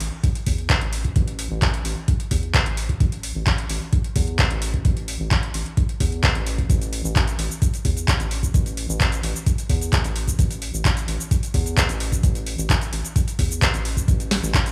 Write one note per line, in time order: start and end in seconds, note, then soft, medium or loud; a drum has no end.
0.00 0.10 A1 medium
0.00 open hi-hat loud
0.24 kick loud
0.24 closed hi-hat medium
0.35 closed hi-hat medium
0.47 0.79 E2 loud
0.47 kick medium
0.47 open hi-hat loud
0.58 closed hi-hat soft
0.70 kick loud
0.70 clap loud
0.70 closed hi-hat medium
0.81 1.13 A1 medium
0.81 closed hi-hat medium
0.93 open hi-hat loud
1.05 kick medium
1.05 closed hi-hat soft
1.16 1.48 A1 loud
1.16 kick loud
1.16 closed hi-hat medium
1.28 closed hi-hat soft
1.39 open hi-hat loud
1.51 1.82 A1 medium
1.62 kick loud
1.62 clap loud
1.62 closed hi-hat medium
1.74 closed hi-hat soft
1.85 1.95 A1 medium
1.85 open hi-hat loud
2.08 kick loud
2.08 closed hi-hat medium
2.20 closed hi-hat medium
2.31 2.63 E2 loud
2.31 kick medium
2.31 open hi-hat loud
2.43 closed hi-hat soft
2.54 kick loud
2.54 clap loud
2.54 closed hi-hat medium
2.66 2.98 A1 medium
2.66 closed hi-hat medium
2.77 open hi-hat loud
2.89 kick medium
2.89 closed hi-hat soft
3.00 3.32 A1 medium
3.00 kick loud
3.00 closed hi-hat medium
3.12 closed hi-hat soft
3.23 open hi-hat loud
3.35 3.67 A1 medium
3.46 kick loud
3.46 clap loud
3.46 closed hi-hat medium
3.58 closed hi-hat soft
3.70 3.80 A1 medium
3.70 open hi-hat loud
3.93 kick loud
3.93 closed hi-hat medium
4.04 closed hi-hat medium
4.16 4.48 E2 loud
4.16 kick medium
4.16 open hi-hat loud
4.28 closed hi-hat soft
4.39 kick loud
4.39 clap loud
4.39 closed hi-hat medium
4.51 4.82 A1 medium
4.51 closed hi-hat soft
4.62 open hi-hat loud
4.74 kick medium
4.74 closed hi-hat soft
4.85 5.17 A1 loud
4.85 kick loud
4.85 closed hi-hat medium
4.97 closed hi-hat soft
5.08 open hi-hat loud
5.20 5.52 A1 medium
5.31 kick loud
5.31 clap loud
5.31 closed hi-hat medium
5.43 closed hi-hat soft
5.54 5.64 A1 medium
5.54 open hi-hat loud
5.66 closed hi-hat soft
5.77 kick loud
5.77 closed hi-hat medium
5.89 closed hi-hat soft
6.00 6.32 E2 loud
6.00 kick medium
6.00 open hi-hat loud
6.12 closed hi-hat soft
6.23 kick loud
6.23 clap loud
6.23 closed hi-hat medium
6.35 6.67 A1 medium
6.35 closed hi-hat soft
6.46 open hi-hat loud
6.58 kick medium
6.58 closed hi-hat soft
6.70 7.02 A1 loud
6.70 kick loud
6.70 closed hi-hat medium
6.70 shaker medium
6.82 closed hi-hat soft
6.82 shaker soft
6.93 open hi-hat loud
7.04 7.36 A1 medium
7.04 shaker medium
7.16 kick loud
7.16 clap loud
7.16 closed hi-hat medium
7.16 shaker medium
7.28 closed hi-hat soft
7.28 shaker soft
7.39 7.49 A1 medium
7.39 open hi-hat loud
7.51 shaker medium
7.62 kick loud
7.62 closed hi-hat medium
7.62 shaker medium
7.74 closed hi-hat medium
7.74 shaker soft
7.85 8.17 E2 loud
7.85 kick medium
7.85 open hi-hat loud
7.97 closed hi-hat soft
7.97 shaker medium
8.08 kick loud
8.08 clap loud
8.08 closed hi-hat medium
8.08 shaker medium
8.20 8.51 A1 medium
8.20 closed hi-hat soft
8.20 shaker soft
8.31 open hi-hat loud
8.43 kick medium
8.43 closed hi-hat soft
8.43 shaker medium
8.54 8.86 A1 loud
8.54 kick loud
8.54 closed hi-hat medium
8.54 shaker medium
8.66 closed hi-hat soft
8.66 shaker soft
8.77 open hi-hat loud
8.89 9.21 A1 loud
8.89 shaker medium
9.00 kick loud
9.00 clap loud
9.00 closed hi-hat medium
9.00 shaker medium
9.12 closed hi-hat soft
9.12 shaker soft
9.23 9.34 A1 medium
9.23 open hi-hat medium
9.36 shaker medium
9.46 kick loud
9.46 closed hi-hat medium
9.46 shaker medium
9.58 closed hi-hat medium
9.58 shaker soft
9.70 10.02 E2 loud
9.70 kick medium
9.70 open hi-hat loud
9.81 closed hi-hat soft
9.81 shaker medium
9.93 kick loud
9.93 clap loud
9.93 closed hi-hat medium
9.93 shaker medium
10.04 10.36 A1 medium
10.04 closed hi-hat soft
10.04 shaker soft
10.16 open hi-hat medium
10.28 kick medium
10.28 closed hi-hat soft
10.28 shaker medium
10.39 10.71 A1 loud
10.39 kick loud
10.39 closed hi-hat medium
10.39 shaker medium
10.51 closed hi-hat medium
10.51 shaker soft
10.62 open hi-hat medium
10.74 11.05 A1 medium
10.74 shaker medium
10.85 kick loud
10.85 clap loud
10.85 closed hi-hat medium
10.85 shaker medium
10.97 closed hi-hat medium
10.97 shaker soft
11.08 11.18 A1 medium
11.08 open hi-hat medium
11.21 shaker medium
11.31 kick loud
11.31 closed hi-hat medium
11.31 shaker medium
11.43 closed hi-hat medium
11.43 shaker soft
11.54 11.86 E2 loud
11.54 kick medium
11.54 open hi-hat loud
11.66 closed hi-hat soft
11.66 shaker medium
11.77 kick loud
11.77 clap loud
11.77 closed hi-hat medium
11.77 shaker medium
11.89 12.21 A1 loud
11.89 closed hi-hat medium
11.89 shaker soft
12.00 open hi-hat medium
12.12 kick medium
12.12 closed hi-hat soft
12.12 shaker medium
12.23 12.55 A1 loud
12.23 kick loud
12.23 closed hi-hat medium
12.23 shaker medium
12.35 closed hi-hat medium
12.35 shaker soft
12.47 open hi-hat loud
12.58 12.90 A1 medium
12.58 closed hi-hat soft
12.58 shaker medium
12.70 kick loud
12.70 clap loud
12.70 closed hi-hat medium
12.70 shaker medium
12.82 closed hi-hat medium
12.82 shaker soft
12.93 13.03 A1 medium
12.93 open hi-hat loud
13.05 closed hi-hat soft
13.05 shaker medium
13.16 kick loud
13.16 closed hi-hat medium
13.16 shaker medium
13.28 closed hi-hat medium
13.28 shaker soft
13.39 13.71 E2 loud
13.39 kick medium
13.39 open hi-hat loud
13.51 closed hi-hat soft
13.51 shaker medium
13.62 kick loud
13.62 clap loud
13.62 closed hi-hat medium
13.62 shaker medium
13.74 14.05 A1 loud
13.74 closed hi-hat medium
13.74 shaker soft
13.85 open hi-hat medium
13.97 kick medium
13.97 closed hi-hat soft
13.97 shaker medium
14.08 14.40 A1 loud
14.08 kick loud
14.08 closed hi-hat medium
14.08 shaker medium
14.20 closed hi-hat medium
14.20 shaker soft
14.31 snare medium
14.31 open hi-hat loud
14.43 14.72 A1 loud
14.43 shaker medium
14.54 kick loud
14.54 clap loud
14.54 closed hi-hat medium
14.54 shaker medium
14.66 closed hi-hat medium
14.66 shaker soft